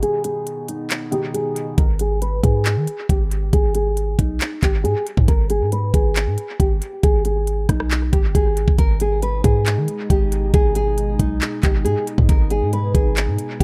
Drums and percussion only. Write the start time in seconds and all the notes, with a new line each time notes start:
0.03 closed hi-hat
0.24 closed hi-hat
0.47 closed hi-hat
0.68 closed hi-hat
0.90 clap, closed hi-hat
1.12 closed hi-hat
1.35 closed hi-hat
1.56 closed hi-hat
1.78 kick, closed hi-hat
1.99 closed hi-hat
2.22 closed hi-hat
2.44 kick, closed hi-hat
2.65 clap, closed hi-hat
2.87 closed hi-hat
3.09 kick, closed hi-hat
3.31 closed hi-hat
3.53 kick, closed hi-hat
3.75 closed hi-hat
3.97 closed hi-hat
4.19 kick, closed hi-hat
4.41 clap, closed hi-hat
4.63 kick, clap, closed hi-hat
4.85 closed hi-hat
5.07 closed hi-hat
5.17 kick
5.28 kick, closed hi-hat
5.50 closed hi-hat
5.72 closed hi-hat
5.94 kick, closed hi-hat
6.16 clap, closed hi-hat
6.38 closed hi-hat
6.60 kick, closed hi-hat
6.82 closed hi-hat
7.03 kick, closed hi-hat
7.25 closed hi-hat
7.47 closed hi-hat
7.69 kick, cross-stick, closed hi-hat
7.80 cross-stick
7.91 clap, closed hi-hat
8.13 kick, closed hi-hat
8.35 kick, closed hi-hat
8.57 closed hi-hat
8.68 kick
8.79 kick, closed hi-hat
9.00 closed hi-hat
9.22 closed hi-hat
9.44 kick, closed hi-hat
9.66 clap, closed hi-hat
9.88 closed hi-hat
10.10 kick, closed hi-hat
10.32 closed hi-hat
10.54 kick, closed hi-hat
10.75 closed hi-hat
10.98 closed hi-hat
11.19 kick, closed hi-hat
11.41 clap, closed hi-hat
11.63 kick, clap, closed hi-hat
11.86 closed hi-hat
12.07 closed hi-hat
12.18 kick
12.29 kick, closed hi-hat
12.50 closed hi-hat
12.73 closed hi-hat
12.95 kick, closed hi-hat
13.17 clap, closed hi-hat
13.39 closed hi-hat
13.60 kick